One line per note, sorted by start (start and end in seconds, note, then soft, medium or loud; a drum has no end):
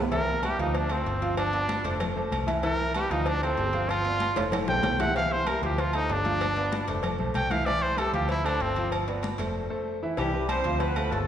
0.00 0.53 C2 medium
0.11 0.37 E3 medium
0.11 0.37 E4 medium
0.11 0.42 A#4 loud
0.11 0.38 E5 medium
0.11 cowbell loud
0.11 high conga soft
0.11 low agogo medium
0.27 high conga soft
0.43 0.56 G3 medium
0.43 0.56 G4 medium
0.43 0.59 G4 medium
0.43 0.56 B4 medium
0.43 cowbell medium
0.43 high conga medium
0.43 low agogo loud
0.59 1.03 D2 medium
0.59 0.85 F3 medium
0.59 0.78 D#4 medium
0.59 0.85 F4 medium
0.59 0.85 F5 medium
0.59 cowbell medium
0.59 high conga soft
0.74 0.93 D4 medium
0.74 cowbell loud
0.74 high conga soft
0.74 low agogo medium
0.89 1.16 A3 medium
0.89 1.37 C4 medium
0.89 1.17 A4 medium
0.89 1.17 C5 medium
0.89 high conga soft
0.89 low agogo loud
1.06 1.79 G1 loud
1.06 cowbell medium
1.06 high conga soft
1.21 1.47 F3 medium
1.21 1.48 F4 medium
1.21 1.48 F5 medium
1.21 cowbell medium
1.37 1.99 D4 loud
1.37 cowbell loud
1.37 high conga soft
1.37 low agogo loud
1.53 1.79 B3 medium
1.53 1.79 B4 medium
1.53 1.79 D5 medium
1.53 cowbell medium
1.53 high conga soft
1.69 cowbell medium
1.69 high conga loud
1.69 low agogo medium
1.84 2.29 F1 medium
1.84 2.10 A3 medium
1.84 2.11 A4 medium
1.84 2.11 C5 medium
1.84 cowbell medium
1.84 high conga soft
1.84 low agogo medium
2.00 cowbell loud
2.00 high conga soft
2.00 low conga medium
2.00 low agogo loud
2.16 2.42 A3 medium
2.16 2.42 A4 medium
2.16 2.42 C5 medium
2.16 high conga soft
2.31 3.05 C2 medium
2.31 cowbell medium
2.31 high conga medium
2.31 low agogo loud
2.47 2.60 E3 medium
2.47 2.60 E4 medium
2.47 2.60 E5 medium
2.47 cowbell medium
2.47 high conga medium
2.47 low agogo loud
2.63 2.89 E3 loud
2.63 2.89 E4 medium
2.63 2.94 A#4 loud
2.63 2.89 E5 medium
2.63 cowbell loud
2.63 high conga soft
2.63 low agogo medium
2.80 high conga soft
2.94 3.08 G3 medium
2.94 3.12 G4 medium
2.94 3.08 G4 medium
2.94 3.08 B4 medium
2.94 cowbell medium
2.94 high conga medium
2.94 low agogo loud
3.10 3.54 D2 medium
3.10 3.36 F3 medium
3.10 3.29 D#4 medium
3.10 3.37 F4 medium
3.10 3.37 F5 medium
3.10 cowbell medium
3.10 high conga soft
3.26 3.42 D4 loud
3.26 cowbell loud
3.26 high conga soft
3.26 low agogo medium
3.42 3.68 A3 medium
3.42 3.91 C4 medium
3.42 3.68 A4 medium
3.42 3.68 C5 medium
3.42 high conga soft
3.42 low agogo medium
3.57 4.31 G1 medium
3.57 cowbell medium
3.57 high conga soft
3.57 low timbale medium
3.73 3.99 F3 medium
3.73 4.00 F4 medium
3.73 4.00 F5 medium
3.73 cowbell medium
3.89 4.50 F4 loud
3.89 cowbell loud
3.89 high conga soft
3.89 low agogo loud
4.05 4.31 B3 medium
4.05 4.31 B4 medium
4.05 4.32 D5 medium
4.05 cowbell medium
4.05 high conga soft
4.20 cowbell medium
4.20 high conga medium
4.20 low agogo medium
4.36 4.66 F1 medium
4.36 4.63 A3 medium
4.36 4.63 A4 medium
4.36 4.63 C5 medium
4.36 cowbell medium
4.36 high bongo medium
4.36 high conga soft
4.36 high timbale medium
4.36 low agogo medium
4.52 cowbell loud
4.52 high conga soft
4.52 low conga medium
4.52 high timbale medium
4.52 low agogo loud
4.67 4.83 B1 medium
4.67 4.94 A3 medium
4.67 4.94 A4 medium
4.67 4.95 C5 medium
4.67 5.02 G5 loud
4.67 low bongo loud
4.67 high conga soft
4.67 low conga medium
4.67 low timbale medium
4.83 5.57 C2 loud
4.83 cowbell medium
4.83 low bongo loud
4.83 high conga medium
4.83 low timbale medium
4.83 low agogo medium
4.99 5.13 E3 medium
4.99 5.13 E4 medium
4.99 5.13 E5 medium
4.99 5.15 F#5 medium
4.99 cowbell medium
4.99 low bongo medium
4.99 high conga medium
4.99 low timbale medium
4.99 low agogo medium
5.15 5.41 E3 medium
5.15 5.41 E4 medium
5.15 5.41 E5 medium
5.15 5.33 F5 medium
5.15 cowbell medium
5.15 high conga soft
5.15 low agogo medium
5.31 5.49 C5 medium
5.31 high conga soft
5.46 5.60 G3 medium
5.46 5.60 G4 medium
5.46 5.62 A#4 medium
5.46 5.60 B4 medium
5.46 cowbell medium
5.46 high conga medium
5.46 low agogo loud
5.62 6.06 D2 loud
5.62 5.89 F3 medium
5.62 5.89 F4 medium
5.62 5.81 G4 medium
5.62 5.89 F5 medium
5.62 cowbell medium
5.62 high conga soft
5.78 5.97 F4 medium
5.78 cowbell loud
5.78 high conga soft
5.78 low agogo medium
5.93 6.20 A3 medium
5.93 6.14 D#4 loud
5.93 6.20 A4 medium
5.93 6.20 C5 medium
5.93 high conga soft
5.93 low agogo loud
6.09 6.83 G1 loud
6.09 7.02 D4 loud
6.09 cowbell medium
6.09 high conga soft
6.09 low timbale medium
6.25 6.51 F3 medium
6.25 6.51 F4 medium
6.25 6.51 F5 medium
6.25 cowbell medium
6.25 high conga medium
6.41 cowbell loud
6.41 high conga soft
6.41 low agogo loud
6.56 6.83 B3 medium
6.56 6.83 B4 medium
6.56 6.83 D5 medium
6.56 cowbell medium
6.56 high conga soft
6.72 cowbell medium
6.72 high conga loud
6.72 low agogo medium
6.88 7.17 F1 medium
6.88 7.14 A3 medium
6.88 7.14 A4 medium
6.88 7.14 C5 medium
6.88 cowbell medium
6.88 high conga soft
6.88 low agogo medium
7.03 cowbell loud
7.03 high conga soft
7.03 low conga medium
7.03 low agogo loud
7.19 7.34 B1 medium
7.19 7.45 A3 medium
7.19 7.45 A4 medium
7.19 7.46 C5 medium
7.19 high conga soft
7.19 low conga medium
7.34 8.08 C2 loud
7.34 7.52 G5 medium
7.34 cowbell medium
7.34 high conga medium
7.34 low agogo loud
7.50 7.64 E3 medium
7.50 7.64 E4 medium
7.50 7.64 E5 medium
7.50 7.67 F5 loud
7.50 cowbell medium
7.50 high conga medium
7.50 low agogo loud
7.66 7.92 E3 medium
7.66 7.93 E4 medium
7.66 7.83 D5 loud
7.66 7.93 E5 medium
7.66 cowbell loud
7.66 high conga soft
7.66 low agogo medium
7.82 8.00 C5 loud
7.82 high conga soft
7.97 8.11 G3 medium
7.97 8.11 G4 medium
7.97 8.13 A4 loud
7.97 8.11 B4 medium
7.97 cowbell medium
7.97 high conga medium
7.97 low agogo loud
8.13 8.57 D2 loud
8.13 8.39 F3 medium
8.13 8.40 F4 medium
8.13 8.29 G4 medium
8.13 8.40 F5 medium
8.13 cowbell medium
8.13 high conga soft
8.29 8.47 E4 medium
8.29 cowbell loud
8.29 high conga soft
8.29 low agogo medium
8.44 8.70 A3 medium
8.44 8.63 D4 medium
8.44 8.71 A4 medium
8.44 8.71 C5 medium
8.44 high conga soft
8.44 low agogo loud
8.60 9.33 G1 loud
8.60 8.91 C4 loud
8.60 cowbell medium
8.60 high conga soft
8.76 9.02 F3 medium
8.76 9.03 F4 medium
8.76 9.03 F5 medium
8.76 cowbell medium
8.92 cowbell medium
8.92 high conga soft
8.92 low agogo loud
9.08 9.34 B3 medium
9.08 9.34 B4 medium
9.08 9.34 D5 medium
9.08 cowbell medium
9.08 high conga soft
9.23 cowbell medium
9.23 high conga loud
9.23 low agogo medium
9.38 9.68 F1 loud
9.38 9.65 A3 medium
9.38 9.65 A4 medium
9.38 9.65 C5 medium
9.38 cowbell medium
9.38 high conga soft
9.38 low agogo medium
9.70 9.96 A3 medium
9.70 9.96 A4 medium
9.70 9.96 C5 medium
10.02 10.15 E3 medium
10.02 10.15 E4 medium
10.02 10.15 E5 medium
10.17 10.61 C2 loud
10.17 10.30 E3 medium
10.17 10.48 G3 medium
10.17 10.31 E4 loud
10.17 10.47 G4 medium
10.17 10.31 E5 loud
10.17 cowbell loud
10.17 high conga soft
10.17 low agogo medium
10.34 10.59 G3 medium
10.34 10.59 G4 medium
10.34 10.59 B4 medium
10.34 high conga soft
10.48 10.79 C4 medium
10.48 10.78 C5 loud
10.48 cowbell medium
10.48 high conga medium
10.48 low agogo loud
10.64 11.09 D2 loud
10.64 10.91 F3 medium
10.64 10.91 F4 medium
10.64 10.91 F5 medium
10.64 cowbell medium
10.64 high conga soft
10.79 11.13 B3 medium
10.79 11.11 B4 loud
10.79 cowbell loud
10.79 high conga soft
10.79 low agogo medium
10.96 11.22 A3 medium
10.96 11.22 A4 medium
10.96 11.22 C5 medium
10.96 high conga soft
10.96 low agogo loud
11.11 11.27 G1 loud
11.11 11.27 A3 medium
11.11 11.27 A4 loud
11.11 cowbell medium
11.11 high conga soft
11.11 low timbale medium